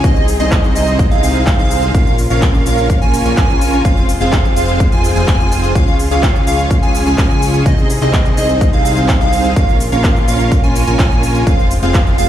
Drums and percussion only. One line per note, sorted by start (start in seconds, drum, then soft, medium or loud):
0.04 kick loud
0.04 closed hi-hat medium
0.04 shaker soft
0.16 shaker soft
0.28 open hi-hat loud
0.28 shaker medium
0.40 closed hi-hat soft
0.40 shaker soft
0.52 kick loud
0.52 clap loud
0.52 closed hi-hat medium
0.52 shaker soft
0.64 shaker soft
0.76 open hi-hat loud
0.76 shaker medium
0.87 closed hi-hat soft
0.87 shaker soft
0.99 kick loud
0.99 closed hi-hat medium
0.99 shaker soft
1.11 closed hi-hat soft
1.11 shaker soft
1.23 open hi-hat loud
1.23 shaker medium
1.35 closed hi-hat soft
1.35 shaker soft
1.47 kick loud
1.47 clap loud
1.47 closed hi-hat medium
1.47 shaker soft
1.59 shaker soft
1.71 open hi-hat loud
1.71 shaker medium
1.83 closed hi-hat soft
1.83 shaker soft
1.95 kick loud
1.95 closed hi-hat medium
1.95 shaker soft
2.07 shaker soft
2.18 open hi-hat loud
2.18 shaker medium
2.30 closed hi-hat medium
2.30 shaker soft
2.42 kick loud
2.42 clap loud
2.42 closed hi-hat medium
2.42 shaker soft
2.54 shaker soft
2.66 open hi-hat loud
2.66 shaker medium
2.78 closed hi-hat medium
2.78 shaker soft
2.90 kick loud
2.90 closed hi-hat medium
2.90 shaker soft
3.02 closed hi-hat soft
3.02 shaker soft
3.14 open hi-hat loud
3.14 shaker medium
3.26 closed hi-hat medium
3.26 shaker soft
3.37 kick loud
3.37 clap loud
3.37 closed hi-hat medium
3.37 shaker soft
3.50 shaker soft
3.61 open hi-hat loud
3.61 shaker medium
3.73 closed hi-hat soft
3.73 shaker soft
3.85 kick loud
3.85 closed hi-hat medium
3.85 shaker soft
3.97 shaker soft
4.09 open hi-hat loud
4.09 shaker medium
4.21 closed hi-hat medium
4.21 shaker soft
4.32 kick loud
4.32 clap loud
4.32 closed hi-hat medium
4.32 shaker soft
4.45 shaker soft
4.56 open hi-hat loud
4.56 shaker medium
4.68 closed hi-hat medium
4.68 shaker soft
4.80 kick loud
4.80 closed hi-hat medium
4.80 shaker soft
4.92 closed hi-hat soft
4.92 shaker soft
5.04 open hi-hat loud
5.04 shaker medium
5.16 closed hi-hat medium
5.16 shaker soft
5.28 kick loud
5.28 clap loud
5.28 closed hi-hat medium
5.28 shaker soft
5.40 shaker soft
5.52 open hi-hat loud
5.52 shaker medium
5.64 closed hi-hat medium
5.64 shaker soft
5.75 kick loud
5.75 closed hi-hat medium
5.75 shaker soft
5.88 shaker soft
5.99 open hi-hat loud
5.99 shaker medium
6.11 closed hi-hat medium
6.11 shaker soft
6.23 kick loud
6.23 clap loud
6.23 closed hi-hat medium
6.23 shaker soft
6.36 shaker soft
6.47 open hi-hat loud
6.47 shaker medium
6.59 closed hi-hat medium
6.59 shaker soft
6.71 kick loud
6.71 closed hi-hat medium
6.71 shaker soft
6.83 closed hi-hat soft
6.83 shaker soft
6.95 open hi-hat loud
6.95 shaker medium
7.07 closed hi-hat medium
7.07 shaker soft
7.18 kick loud
7.18 clap loud
7.18 closed hi-hat medium
7.18 shaker soft
7.31 shaker soft
7.42 open hi-hat loud
7.42 shaker medium
7.54 closed hi-hat medium
7.54 shaker soft
7.66 kick loud
7.66 closed hi-hat medium
7.66 shaker soft
7.78 shaker soft
7.90 open hi-hat loud
7.90 shaker medium
8.01 clap soft
8.01 closed hi-hat medium
8.01 shaker soft
8.13 kick loud
8.13 clap loud
8.13 closed hi-hat medium
8.13 shaker soft
8.25 closed hi-hat soft
8.25 shaker soft
8.37 open hi-hat loud
8.37 shaker medium
8.49 closed hi-hat medium
8.49 shaker soft
8.61 kick loud
8.61 closed hi-hat medium
8.61 shaker soft
8.73 closed hi-hat soft
8.73 shaker soft
8.85 open hi-hat loud
8.85 shaker medium
8.97 closed hi-hat medium
8.97 shaker soft
9.09 kick loud
9.09 clap loud
9.09 closed hi-hat medium
9.09 shaker soft
9.21 shaker soft
9.33 open hi-hat loud
9.33 shaker medium
9.45 closed hi-hat medium
9.45 shaker soft
9.56 kick loud
9.56 closed hi-hat medium
9.56 shaker soft
9.69 shaker soft
9.80 open hi-hat loud
9.80 shaker medium
9.92 closed hi-hat medium
9.92 shaker soft
10.04 kick loud
10.04 clap loud
10.04 closed hi-hat medium
10.04 shaker soft
10.16 shaker soft
10.28 open hi-hat loud
10.28 shaker medium
10.40 closed hi-hat medium
10.40 shaker soft
10.52 kick loud
10.52 closed hi-hat medium
10.52 shaker soft
10.64 closed hi-hat soft
10.64 shaker soft
10.76 open hi-hat loud
10.76 shaker medium
10.87 closed hi-hat medium
10.87 shaker soft
10.99 kick loud
10.99 clap loud
10.99 closed hi-hat medium
10.99 shaker soft
11.12 shaker soft
11.23 open hi-hat loud
11.23 shaker medium
11.35 closed hi-hat medium
11.35 shaker soft
11.47 kick loud
11.47 closed hi-hat medium
11.47 shaker soft
11.59 shaker soft
11.71 open hi-hat loud
11.71 shaker medium
11.83 closed hi-hat medium
11.83 shaker soft
11.94 kick loud
11.94 clap loud
11.94 closed hi-hat medium
11.94 shaker soft
12.07 shaker soft
12.18 open hi-hat loud
12.18 shaker medium